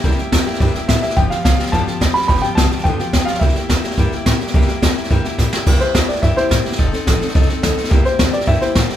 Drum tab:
CC |----------------|----------------|----------------|----------------|
HH |----p-------p---|----p-------p---|----p-------p---|----p-------p---|
SD |ooo-o-ooooo-o-oo|o-o-o-ooo-o-o-oo|ooo-o-ooo-o-o-oo|ooo-o-ooo-o-o-oo|
BD |o---o---o---o---|o---o---o---o---|o---o---o---o---|o---o---o---o---|

CC |----------------|x---------------|----------------|----------------|
HH |----p-------p---|----p-------p---|----p-------p---|----p-------p---|
SD |ooo-o-ooo-o-o-o-|ooo-o-ooo-o-o-oo|o-o-o-ooooo-o-oo|o-o-o-ooooo-o-o-|
BD |o---o---o---o---|o---o---o---o---|o---o---o---o---|o---o---o---o---|